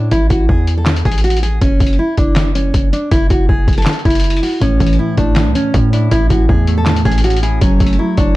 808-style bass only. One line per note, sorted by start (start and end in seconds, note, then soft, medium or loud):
0.00 0.10 A2 loud
0.12 0.30 A1 loud
0.30 0.48 A1 loud
0.49 1.03 E2 loud
1.05 1.59 A1 loud
1.62 1.80 F#1 loud
1.80 1.98 F#1 loud
2.18 2.72 F#1 loud
2.74 2.92 F#1 loud
3.12 3.30 F#1 loud
3.30 3.48 F#1 loud
3.49 3.67 F#1 loud
3.68 3.86 F#1 loud
4.05 4.41 F#1 loud
4.62 4.80 A1 loud
4.80 4.98 A1 loud
5.18 5.48 A1 loud
5.46 5.55 C#2 loud
5.74 6.10 A2 loud
6.12 6.30 A1 loud
6.30 6.48 A1 loud
6.49 7.03 E2 loud
7.05 7.59 A1 loud
7.62 7.80 F#1 loud
7.80 7.98 F#1 loud
8.18 8.37 F#1 loud